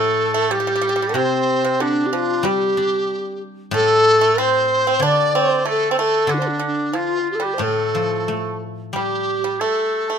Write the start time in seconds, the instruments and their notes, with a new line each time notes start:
Already playing: guzheng A2 F3, pipa A3, dizi A4, oboe A4
0.34 pipa A3
0.51 pipa G3, dizi G4, oboe G4
0.60 pipa G3
0.67 pipa G3
0.75 pipa G3
0.81 pipa G3
0.89 pipa G3
0.96 pipa G3
1.02 pipa G3
1.09 pipa D3
1.14 guzheng C3, pipa C3, oboe C4, dizi C5
1.64 pipa C3
1.80 pipa D3, dizi D4, oboe D4
2.06 dizi G4
2.13 pipa F3, dizi F4
2.43 guzheng G3, pipa G3, oboe G4, dizi G4
2.77 guzheng D4
3.71 guzheng A2, pipa A3, oboe A4, dizi A4
4.21 pipa A3
4.38 pipa C4, oboe C5, dizi C5
4.87 pipa C4
5.00 guzheng D3, pipa D4, oboe D5
5.06 dizi D5
5.35 pipa C4, dizi C5
5.65 pipa A3, oboe A4
5.70 dizi A4
5.91 pipa C4, dizi C5
5.99 pipa A3, dizi A4
6.27 guzheng D3, pipa D3, oboe D4
6.34 dizi D4 C5
6.42 pipa D3
6.48 dizi D4
6.59 pipa D3
6.66 dizi D4
6.93 pipa F3, oboe F4
6.98 dizi F4
7.23 pipa D3
7.31 dizi G4 A4
7.40 pipa G3, oboe G4
7.44 dizi G4
7.54 dizi C5
7.58 guzheng A2, pipa A3
7.62 oboe A4, dizi A4
7.95 guzheng F3
8.28 guzheng A3
8.93 guzheng G3, pipa G3, dizi G4, oboe G4
9.44 pipa G3
9.60 pipa A3, dizi A4, oboe A4
10.10 pipa A3